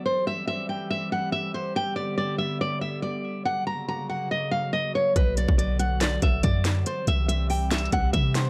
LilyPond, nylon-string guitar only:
\new Staff \with { instrumentName = "Nylon-string guitar" } { \time 4/4 \key c \lydian \tempo 4 = 141 c''8 e''8 e''8 g''8 e''8 fis''8 e''8 c''8 | g''8 d''8 d''8 e''8 d''8 e''8 d''4 | fis''8 ais''8 ais''8 fis''8 dis''8 eis''8 dis''8 cis''8 | b'8 d''8 d''8 fis''8 d''8 e''8 d''4 |
c''8 e''8 e''8 g''8 e''8 fis''8 e''8 c''8 | }